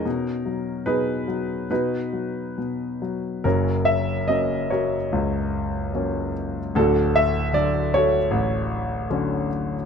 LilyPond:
<<
  \new Staff \with { instrumentName = "Grand piano" } { \time 4/4 \key fis \mixolydian \tempo 4 = 73 << { ais'4 b'4 b'4. r8 | ais'8 e''8 dis''8 cis''4. r4 | a'8 e''8 d''8 cis''4. r4 | } \\ { <cis' dis'>4 <dis' gis'>4 <dis' fis'>2 | <cis' fis'>4. <fis' ais'>2 r8 | <d' fis'>4. <fis' a'>2 r8 | } >> }
  \new Staff \with { instrumentName = "Grand piano" } { \clef bass \time 4/4 \key fis \mixolydian b,8 fis8 b,8 fis8 b,8 fis8 b,8 fis8 | <fis,, fis,>4 <fis ais cis'>4 cis,4 <fis ais cis'>4 | <d,, d,>4 <d fis d'>4 a,,4 <d fis cis'>4 | }
>>